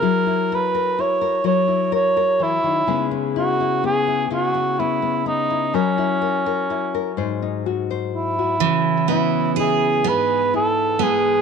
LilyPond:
<<
  \new Staff \with { instrumentName = "Cor anglais" } { \time 6/8 \key cis \dorian \tempo 4. = 42 ais'8 b'8 cis''8 cis''8 cis''8 e'8 | r8 fis'8 gis'8 fis'8 e'8 dis'8 | cis'4. r4 e'8~ | \key cis \minor e'8 e'8 gis'8 b'8 a'8 gis'8 | }
  \new Staff \with { instrumentName = "Nylon-string guitar" } { \time 6/8 \key cis \dorian << { e'16 e'16 ais'16 ais'16 e'16 ais'16 ais'16 e'16 ais'16 ais'8. | <gis b>16 b16 e'16 e'16 b16 e'16 e'16 b16 b16 b16 b16 e'16 | ais'16 e'16 ais'16 ais'16 e'16 ais'16 bis'16 dis'16 fis'16 bis'8 fis'16 | \key cis \minor r8 b8 e'4 e'4 | } \\ { fis4. fis4 e16 dis16 | cis4. cis4. | fis4. gis,4. | cis4. gis,4 gis8 | } >> }
  \new Staff \with { instrumentName = "Steel-string acoustic guitar" } { \time 6/8 \key cis \dorian r2. | r2. | r2. | \key cis \minor e8 b8 gis'8 b4 b8 | }
>>